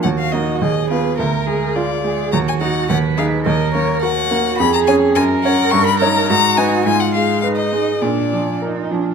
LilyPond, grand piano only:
\new Staff \with { instrumentName = "Grand piano" } { \time 2/4 \key ees \minor \tempo 4 = 106 ees,8 <bes ees'>8 ees,8 <ces' f'>8 | d,8 aes8 f'8 aes8 | ees,8 <ees' ges'>8 ees,8 <ees' aes'>8 | ees,8 bes8 bes'8 bes8 |
f,8 <des' des''>8 ges,8 <des' des''>8 | g,8 <ees' des''>8 aes,8 <ees' ces''>8 | aes,8 aes8 ces''8 aes8 | bes,8 f8 bes'8 f8 | }